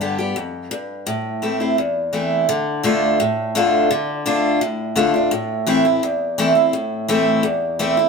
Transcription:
Already playing: G2
0.01 D3 G3 B3 G4
0.19 B3 G4
0.36 F2
0.71 G2
1.07 A2
1.42 E3 A3 C4 E4
1.60 C4 E4
1.78 E2
2.13 E3 A3 C4 E4
2.49 D3
2.83 D3 A3 D4 F4
3.20 A2
3.55 D3 A3 D4 F4
3.91 D3
4.26 D3 A3 D4 F4
4.61 A2
4.96 D3 A3 D4 F4
5.14 D4 F4
5.31 A2
5.67 E3 A3 C4 E4
5.85 C4 E4
6.03 E2
6.38 E3 A3 C4 E4
6.55 C4 E4
6.73 A2
7.08 E3 A3 C4 E4
7.43 E2
7.79 E3 A3 C4 E4
7.97 C4 E4

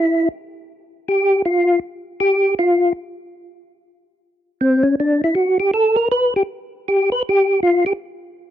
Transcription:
Already playing: E4
1.08 G4
1.45 F4
2.20 G4
2.59 F4
4.61 C4
4.83 C#4
5.00 D4
5.24 E4
5.35 F#4
5.60 G4
5.74 A4
5.96 A#4
6.12 B4
6.36 G4
6.88 G4
7.12 B4
7.29 G4
7.63 F4
7.86 G4

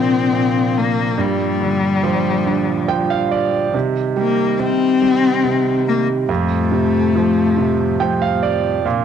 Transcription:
Already playing: A#2 C3 F3 A#3 C4 D4
0.33 A#2
0.78 A#3
1.18 G2 A#2 G3
1.61 D3
2.04 F3
2.46 D3
2.88 F3 G5
3.10 F5
3.31 D5
3.74 C3 D#3 D#4
4.16 G3 A#3
4.59 C3 C4
5.02 G3
5.44 C3
5.88 A#3
6.28 F2 A2 F3 A3 C4
6.72 C3
7.15 F3
7.57 C3
8.00 F3 G5
8.22 F5
8.43 D5
8.85 A#2 C3 A#3 D4

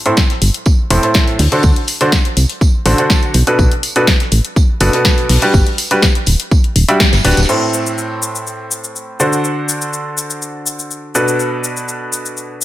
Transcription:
0.06 A2 C4 E4 A4 C5, closed hi-hat
0.17 kick, snare, tambourine
0.30 snare, closed hi-hat
0.42 G1, open hi-hat, tambourine
0.54 closed hi-hat
0.66 kick, tambourine
0.90 E1 A2 C4 E4 A4 C5, open hi-hat, tambourine
1.03 A2 C4 E4 A4 C5, closed hi-hat
1.14 kick, snare, tambourine
1.27 closed hi-hat
1.39 D2, snare, open hi-hat
1.52 D3 D4 F#4 A4 C5, closed hi-hat
1.63 D2, kick, tambourine
1.76 closed hi-hat
1.88 open hi-hat, tambourine
2.01 D3 D4 F#4 A4 C5, closed hi-hat
2.12 kick, snare, tambourine
2.25 closed hi-hat
2.37 C2, open hi-hat, tambourine
2.49 closed hi-hat
2.61 kick, tambourine
2.86 A1 D3 D4 F#4 A4 C5, open hi-hat, tambourine
2.98 D3 D4 F#4 A4 C5, closed hi-hat
3.10 kick, snare, tambourine
3.23 closed hi-hat
3.34 B1, open hi-hat, tambourine
3.47 B2 D4 F#4 A4 B4, closed hi-hat
3.59 B1, kick, tambourine
3.71 closed hi-hat
3.83 open hi-hat, tambourine
3.96 B2 D4 F#4 A4 B4, closed hi-hat
4.07 kick, snare, tambourine
4.20 snare, closed hi-hat
4.32 A1, open hi-hat, tambourine
4.45 closed hi-hat
4.56 kick, tambourine
4.80 F#1 B2 D4 F#4 A4 B4, open hi-hat, tambourine
4.93 B2 D4 F#4 A4 B4, closed hi-hat
5.05 kick, snare, tambourine
5.18 closed hi-hat
5.29 B1, snare, open hi-hat
5.42 G3 D4 F#4 G4 B4, closed hi-hat
5.54 G1, kick, tambourine
5.67 closed hi-hat
5.78 open hi-hat, tambourine
5.91 G3 D4 F#4 G4 B4, closed hi-hat
6.02 kick, snare, tambourine
6.15 closed hi-hat
6.26 D1, open hi-hat, tambourine
6.40 closed hi-hat
6.51 kick, tambourine
6.64 closed hi-hat
6.76 D1, open hi-hat, tambourine
6.88 G3 D4 F#4 G4 E5, closed hi-hat
7.00 kick, snare, tambourine
7.13 G1, snare, closed hi-hat, tambourine
7.25 D1 D4 F#4 G4 B4, snare, open hi-hat, tambourine
7.31 snare, tambourine
7.37 D1, snare, closed hi-hat, tambourine
7.43 snare, tambourine
7.49 A2 C4 E4 A4 C5, crash, cabasa
7.74 cabasa
7.86 cabasa
7.98 cabasa
8.23 cabasa
8.35 cabasa
8.47 cabasa
8.71 cabasa
8.84 cabasa
8.96 cabasa
9.20 D3 D4 F#4 A4 C5, cabasa
9.33 cabasa
9.44 cabasa
9.69 cabasa
9.82 cabasa
9.93 cabasa
10.18 cabasa
10.30 cabasa
10.42 cabasa
10.66 cabasa
10.79 cabasa
10.91 cabasa
11.15 B2 D4 F#4 A4 B4, cabasa
11.28 cabasa
11.40 cabasa
11.64 cabasa
11.77 cabasa
11.88 cabasa
12.13 cabasa
12.25 cabasa
12.37 cabasa

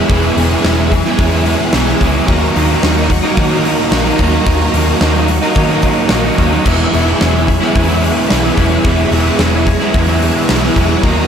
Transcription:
Already playing: G#3 B3 C#4 E4 G#4 E5 C#6
0.00 B3
0.09 E1 E3 G#3 B3 A#5, kick, open hi-hat
0.13 E4 G#4
0.36 E1 E3 G#3 B3 E4 G#4, open hi-hat
0.52 B3 E4 G#4
0.64 E1 E3 G#3 B3 C#4 E4 G#4, snare, open hi-hat
0.79 G#3 B3 E4
0.91 G#4, muted overdriven electric guitar stroke, kick, open hi-hat
1.06 G#3 B3 E4 G#4, snare
1.18 E2 C#4, kick, open hi-hat
1.33 G#3 B3 E4 G#4
1.45 E3 G#3 B3 E4 G#4, open hi-hat
1.72 B1 E3 G#3 B3, snare, open hi-hat
1.76 B3 E4 G#4
1.88 G#3 B3 E4 G#4, snare
2.00 C#2 E3 G#3 B3 C#4 E4 G#4, kick, open hi-hat
2.15 G#3 B3 E4 G#4
2.26 D#2 D#3 F#3 A#3 F#4 D#5, kick, open hi-hat
2.30 A#3 D#4
2.55 D#2 D#3 F#3 A#3 D#4, open hi-hat
2.70 F#3 A#3 D#4
2.83 D#2 D#3 F#3 A#3 C#4 D#4, snare, open hi-hat
2.96 F#3 A#3 D#4
3.10 F#4, muted overdriven electric guitar stroke, kick, open hi-hat
3.23 F#3 A#3 D#4
3.37 D#3 C#4, kick, open hi-hat
3.51 F#3 A#3 D#4
3.64 D#3 F#3 A#3, open hi-hat
3.68 D#4
3.91 A#1 D#3 F#3 A#3, snare, open hi-hat
3.96 D#4
4.08 F#3 A#3 D#4
4.19 D#2 D#3 F#3 A#3 C#4, kick, open hi-hat
4.23 D#4
4.34 F#3 A#3 D#4
4.46 D#2 D#3 F#3 A#3 D#4, kick, open hi-hat
4.73 D#2 D#3 F#3 A#3 D#4, open hi-hat
4.88 F#3 A#3 D#4
5.01 D#2 D#3 F#3 A#3 C#4 D#4, snare, open hi-hat
5.15 F#3 A#3 D#4
5.28 F#4, muted overdriven electric guitar stroke, open hi-hat
5.42 F#3 A#3 D#4, snare
5.55 D#3 C#4, kick, open hi-hat
5.69 F#3 A#3 D#4
5.82 D#3 F#3 A#3 D#4, kick, open hi-hat
6.09 A#1 D#3 F#3 A#3 D#4, snare, open hi-hat
6.24 F#3 A#3 D#4
6.36 D#2 D#3 F#3 A#3 C#4 D#4, kick, open hi-hat
6.41 F#3 A#3
6.51 F#3 A#3 D#4
6.64 E1 E3 G#3 B3 E4 G#4 E5 B5, kick, crash
6.92 E1 E3 G#3 B3 E4, open hi-hat
7.06 G#3 B3 E4
7.20 E1 E3 G#3 B3 C#4 E4, snare, open hi-hat
7.34 G#3 B3 E4
7.47 G#4, muted overdriven electric guitar stroke, kick, open hi-hat
7.60 G#3 B3 E4, snare
7.75 E2 C#4, kick, open hi-hat
7.86 G#3 B3 E4
8.01 E3 G#3 B3 E4, open hi-hat
8.29 B1 E3 G#3 B3 E4, snare, open hi-hat
8.43 G#3 B3 E4
8.57 E1 E3 G#3 B3 C#4 E4, kick, open hi-hat
8.71 G#3 B3 E4
8.84 E1 E3 G#3 B3 E4 A#5, kick, open hi-hat
9.11 E1 E3 G#3 B3 E4, open hi-hat
9.26 G#3 B3 E4
9.39 E1 E3 G#3 B3 C#4 E4, snare, open hi-hat
9.54 G#3 B3 E4
9.66 G#4, muted overdriven electric guitar stroke, kick, open hi-hat
9.80 G#3 B3 E4, snare
9.94 E2 C#4, kick, open hi-hat
10.09 G#3 B3 E4
10.21 E3 G#3 B3 E4, open hi-hat
10.48 B1 E3 G#3 B3 E4, snare, open hi-hat
10.63 G#3 B3 E4, snare
10.76 E1 E3 G#3 B3 C#4 E4, kick, open hi-hat
10.90 G#3 B3 E4
11.03 D#2 D#3 F#3 A#3 D#4 F#4 C#5 C#6, kick, open hi-hat

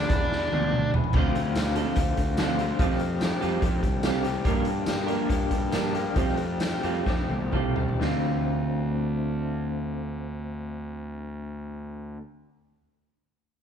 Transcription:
Already playing: D3 F3 A3 D4
0.09 E2 E3, kick, closed hi-hat
0.32 snare
0.52 D2 D3 F3 A3 D4, high tom
0.63 high tom
0.73 mid tom
0.94 E2 E3, floor tom
1.04 floor tom
1.13 D2 D3 F3 C4 D4 A4, kick, crash
1.17 A3 C4 F4
1.35 muted clean electric guitar stroke, closed hi-hat
1.55 D3 A3 C4, muted clean electric guitar stroke, snare, closed hi-hat, tambourine
1.60 F4
1.75 F3 A3 C4 D4 F4 A4, closed hi-hat
1.96 D2 D3 A3, muted clean electric guitar stroke, kick, closed hi-hat
2.00 C4 F4
2.17 D2, muted clean electric guitar stroke, kick, closed hi-hat
2.37 D3 F3 A3 C4 D4 A4, snare, closed hi-hat, tambourine
2.41 C4 F4
2.58 A3 C4 F4, muted clean electric guitar stroke, closed hi-hat
2.79 F2 F3 G3 A3 C4 F4 G4 A4, kick, closed hi-hat
2.91 snare
2.99 muted clean electric guitar stroke, closed hi-hat
3.20 F3 A3 C4, muted clean electric guitar stroke, snare, closed hi-hat, tambourine
3.24 G4
3.41 F2 G3 C4 F4 G4 A4, closed hi-hat
3.45 A3
3.62 F2 F3 A3 C4 G4, muted clean electric guitar stroke, kick, closed hi-hat
3.83 C2, muted clean electric guitar stroke, kick, closed hi-hat
4.03 F3 G3 A3 C4 F4 G4 A4, snare, closed hi-hat, tambourine
4.23 A3 C4 G4, muted clean electric guitar stroke, closed hi-hat
4.44 G2 D3 F3 A#3 D4 A#4, kick, closed hi-hat
4.49 D4 G4
4.65 muted clean electric guitar stroke, closed hi-hat
4.86 G2 D3 F3 A#3 D4 G4, muted clean electric guitar stroke, snare, closed hi-hat, tambourine
5.07 F3 A#3 D4 G4 A#4, closed hi-hat
5.11 F3
5.29 G2 F3 A#3 D4 G4, muted clean electric guitar stroke, kick, closed hi-hat
5.51 G2, muted clean electric guitar stroke, kick, closed hi-hat
5.72 F3 A#3 D4 G4 A#4, snare, closed hi-hat, tambourine
5.93 F3 A#3 D4 G4, muted clean electric guitar stroke, closed hi-hat
6.14 F2 F3 G3 A3 C4 F4 G4 A4, kick, closed hi-hat
6.28 snare
6.37 muted clean electric guitar stroke, closed hi-hat
6.60 F3 A3 C4 G4, muted clean electric guitar stroke, snare, closed hi-hat, tambourine
6.83 F2 G3 A3 C4 F4 G4 A4, closed hi-hat
7.05 F2 F3 A3 C4 G4, muted clean electric guitar stroke, kick, snare
7.29 C2, muted clean electric guitar stroke, high tom
7.40 high tom
7.52 F3 G3 A3 C4 F4 G4 A4, kick, mid tom
7.76 A3 C4 G4, muted clean electric guitar stroke, floor tom
7.89 floor tom
8.00 D2 D3 A3 C4 F4, snare
8.04 F4

